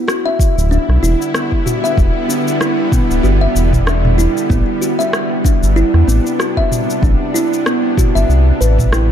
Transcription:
0.00 4.46 D3 medium
0.00 9.12 G3 medium
0.00 4.46 B3 medium
0.00 4.46 E4 medium
0.08 0.25 F#4 medium
0.08 cross-stick loud
0.08 shaker soft
0.26 0.39 E5 medium
0.39 kick loud
0.39 shaker medium
0.57 0.78 D1 medium
0.57 shaker soft
0.71 0.88 D4 medium
0.71 shaker soft
0.89 0.99 B1 medium
0.89 cross-stick soft
1.03 1.15 E1 medium
1.03 1.13 E4 medium
1.03 shaker medium
1.22 shaker soft
1.34 1.44 B3 medium
1.34 cross-stick loud
1.34 shaker soft
1.52 kick medium
1.66 1.83 F#4 medium
1.66 mid tom medium
1.66 shaker medium
1.84 1.97 E5 medium
1.84 shaker soft
1.97 2.10 E1 medium
1.97 kick loud
1.97 shaker soft
2.29 2.46 D4 medium
2.29 shaker medium
2.48 shaker soft
2.61 2.71 E4 medium
2.61 cross-stick loud
2.61 shaker soft
2.92 3.02 B3 medium
2.92 kick loud
2.92 mid tom medium
2.92 shaker medium
3.10 3.20 D1 medium
3.10 shaker soft
3.23 3.47 G1 medium
3.23 3.41 F#4 medium
3.23 shaker soft
3.41 3.55 E5 medium
3.55 4.28 E1 medium
3.55 shaker medium
3.73 kick medium
3.73 mid tom medium
3.73 shaker soft
3.87 4.04 D4 medium
3.87 cross-stick medium
3.87 shaker soft
4.05 mid tom medium
4.18 4.29 E4 loud
4.18 shaker medium
4.37 shaker soft
4.50 4.63 A1 medium
4.50 9.12 C3 medium
4.50 4.60 B3 medium
4.50 9.12 B3 medium
4.50 9.12 D4 medium
4.50 kick loud
4.50 shaker soft
4.81 4.98 F#4 medium
4.81 shaker medium
4.99 5.12 E5 medium
4.99 shaker soft
5.13 cross-stick loud
5.13 shaker soft
5.44 5.62 D4 medium
5.44 kick loud
5.44 shaker medium
5.62 5.83 G1 medium
5.62 shaker soft
5.76 5.86 E4 loud
5.76 shaker soft
5.94 6.04 E2 medium
5.94 cross-stick soft
6.08 6.20 A1 medium
6.08 6.18 B3 medium
6.08 shaker medium
6.27 shaker soft
6.39 6.56 F#4 medium
6.39 cross-stick medium
6.39 shaker soft
6.57 6.70 E5 medium
6.57 kick medium
6.72 mid tom medium
6.72 shaker medium
6.90 shaker soft
7.03 7.15 A1 medium
7.03 7.20 D4 medium
7.03 kick loud
7.03 shaker soft
7.34 7.45 E4 medium
7.34 shaker medium
7.53 shaker soft
7.66 7.76 B3 medium
7.66 cross-stick loud
7.66 shaker soft
7.98 8.15 F#4 medium
7.98 kick loud
7.98 mid tom medium
7.98 shaker medium
8.15 8.25 G1 medium
8.15 8.28 E5 medium
8.15 shaker soft
8.29 8.52 C2 medium
8.29 shaker soft
8.61 9.10 A1 medium
8.61 8.77 B4 medium
8.61 shaker medium
8.79 kick medium
8.79 mid tom medium
8.79 shaker soft
8.92 9.09 E4 medium
8.92 cross-stick medium
8.92 shaker soft

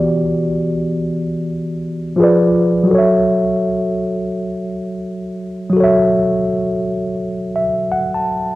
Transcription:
0.00 2.11 E3 medium
0.00 2.13 B3 medium
0.00 2.15 F#4 medium
0.00 2.17 G4 medium
0.00 2.22 D5 medium
2.16 2.89 F3 medium
2.16 2.89 F4 medium
2.16 2.90 G#4 medium
2.22 2.91 B4 medium
2.22 2.92 D5 medium
2.83 5.68 F#3 medium
2.83 5.70 F#4 medium
2.91 5.72 A4 medium
2.91 5.74 C#5 medium
2.98 5.76 E5 medium
5.70 8.54 F#3 medium
5.70 8.55 F#4 medium
5.76 8.55 A4 medium
5.76 8.55 C#5 medium
5.84 7.54 E5 medium
7.56 7.88 E5 medium
7.92 8.12 F#5 medium
8.14 8.55 A5 medium

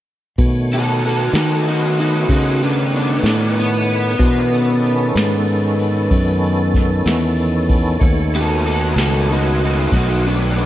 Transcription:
0.38 1.31 B2 medium
0.38 4.16 D#3 medium
0.38 4.16 A3 medium
0.38 4.16 B3 medium
0.38 4.16 C#5 medium
0.38 kick medium
0.38 ride medium
0.70 1.04 F#4 medium
0.70 ride medium
0.74 1.03 A4 medium
1.02 1.33 F#4 medium
1.02 ride medium
1.06 1.35 A4 medium
1.33 2.26 D#3 medium
1.33 1.64 F#4 medium
1.33 1.66 A4 medium
1.33 snare loud
1.33 ride medium
1.65 1.96 D#4 medium
1.65 1.98 F#4 medium
1.65 ride medium
1.97 2.28 D#4 medium
1.97 2.30 F#4 medium
1.97 ride medium
2.29 3.22 C#3 medium
2.29 2.59 D#4 medium
2.29 2.61 F#4 medium
2.29 kick medium
2.29 ride medium
2.61 2.92 B3 medium
2.61 2.93 D4 medium
2.61 ride medium
2.92 3.25 D4 medium
2.92 ride medium
2.96 3.24 B3 medium
3.23 4.16 A2 medium
3.23 3.55 B3 medium
3.23 snare medium
3.23 ride medium
3.28 3.57 D4 medium
3.56 5.44 B3 medium
3.56 ride medium
3.88 ride medium
4.18 5.12 B2 medium
4.18 4.51 E3 medium
4.18 4.51 D4 medium
4.18 4.51 A#4 medium
4.18 4.51 C5 medium
4.18 kick loud
4.18 ride medium
4.51 7.97 D#3 medium
4.51 7.97 B3 medium
4.51 7.97 C#4 medium
4.51 7.97 A4 medium
4.51 ride medium
4.84 ride medium
5.15 6.08 G#2 medium
5.15 snare loud
5.15 ride medium
5.47 ride medium
5.79 ride medium
6.11 7.03 F#2 medium
6.11 kick medium
6.11 ride medium
6.43 ride medium
6.74 kick medium
6.74 snare soft
6.74 ride medium
7.06 7.98 E2 loud
7.06 snare medium
7.06 ride medium
7.38 ride medium
7.69 kick medium
7.69 ride medium
7.99 8.93 D#2 medium
7.99 10.66 D#3 medium
7.99 10.66 A3 medium
7.99 10.66 B3 medium
7.99 10.66 C#5 medium
7.99 kick loud
7.99 ride medium
8.33 8.65 F#4 medium
8.33 8.65 A4 medium
8.33 ride medium
8.65 8.95 F#4 medium
8.65 8.96 A4 medium
8.65 ride medium
8.96 9.88 C#2 medium
8.96 9.27 F#4 medium
8.96 9.28 A4 medium
8.96 snare loud
8.96 ride medium
9.29 9.59 D#4 medium
9.29 9.61 F#4 medium
9.29 ride medium
9.60 9.92 D#4 medium
9.60 ride medium
9.65 9.93 F#4 medium
9.92 10.66 B1 medium
9.92 10.23 D#4 medium
9.92 kick medium
9.92 snare soft
9.92 ride medium
9.96 10.25 F#4 medium
10.24 10.55 B3 medium
10.24 10.56 D4 medium
10.24 ride medium
10.56 10.66 B3 medium
10.56 10.66 D4 medium
10.56 ride medium

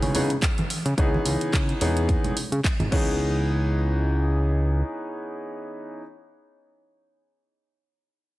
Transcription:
0.00 0.36 C#3 medium
0.00 0.11 E3 medium
0.00 0.11 B3 medium
0.00 0.12 C#4 medium
0.00 0.12 D#4 medium
0.00 0.12 G#4 medium
0.00 open hi-hat medium
0.00 low conga medium
0.14 0.28 E3 medium
0.14 0.28 B3 medium
0.14 0.28 C#4 medium
0.14 0.29 D#4 medium
0.14 0.29 G#4 medium
0.14 open hi-hat loud
0.14 low conga medium
0.30 closed hi-hat soft
0.42 kick loud
0.42 clap loud
0.42 closed hi-hat medium
0.58 closed hi-hat soft
0.58 high conga medium
0.70 open hi-hat loud
0.85 0.94 C#3 medium
0.85 closed hi-hat soft
0.98 1.18 C#2 medium
0.98 1.78 E3 medium
0.98 1.78 B3 medium
0.98 1.78 C#4 medium
0.98 1.79 D#4 medium
0.98 1.79 G#4 medium
0.98 kick loud
0.98 closed hi-hat medium
1.14 high conga medium
1.25 1.36 C#2 loud
1.25 open hi-hat loud
1.41 1.51 C#3 soft
1.41 closed hi-hat soft
1.53 1.74 C#3 medium
1.53 kick loud
1.53 clap loud
1.53 closed hi-hat medium
1.69 closed hi-hat soft
1.81 2.17 E2 medium
1.81 2.34 E3 medium
1.81 2.34 B3 medium
1.81 2.34 C#4 medium
1.81 2.34 D#4 medium
1.81 2.34 G#4 medium
1.81 open hi-hat loud
1.81 low conga medium
1.97 closed hi-hat soft
2.09 kick loud
2.09 closed hi-hat medium
2.24 closed hi-hat soft
2.24 low conga medium
2.37 open hi-hat loud
2.52 2.61 C#3 medium
2.52 closed hi-hat soft
2.64 kick loud
2.64 clap loud
2.64 closed hi-hat medium
2.80 2.88 G#2 medium
2.80 closed hi-hat soft
2.80 high conga medium
2.80 low conga medium
2.91 4.82 C#2 medium
2.91 5.98 E3 medium
2.91 5.99 B3 medium
2.91 6.00 C#4 medium
2.91 6.01 D#4 medium
2.91 6.01 G#4 medium
2.91 kick loud
2.91 crash medium

